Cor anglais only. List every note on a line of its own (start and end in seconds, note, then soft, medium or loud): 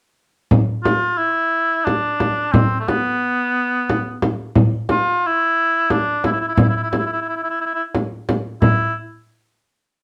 0.84 1.19 F4 medium
1.18 1.87 E4 medium
1.85 2.54 D4 medium
2.52 2.79 C4 medium
2.80 2.89 A3 soft
2.88 4.23 B3 medium
4.91 5.28 F4 medium
5.26 5.93 E4 medium
5.92 6.25 D4 medium
6.25 6.32 E4 medium
6.32 6.40 E4 medium
6.40 6.48 E4 medium
6.49 6.54 E4 soft
6.54 6.61 E4 medium
6.61 6.69 E4 soft
6.69 6.76 E4 medium
6.76 6.83 E4 soft
6.83 6.90 E4 soft
6.90 6.97 E4 soft
6.98 7.06 E4 soft
7.06 7.12 E4 soft
7.12 7.21 E4 soft
7.22 7.28 E4 soft
7.29 7.36 E4 soft
7.36 7.43 E4 soft
7.43 7.50 E4 medium
7.50 7.58 E4 soft
7.61 7.65 E4 medium
7.66 7.74 E4 soft
7.75 7.82 E4 medium
8.62 8.94 E4 medium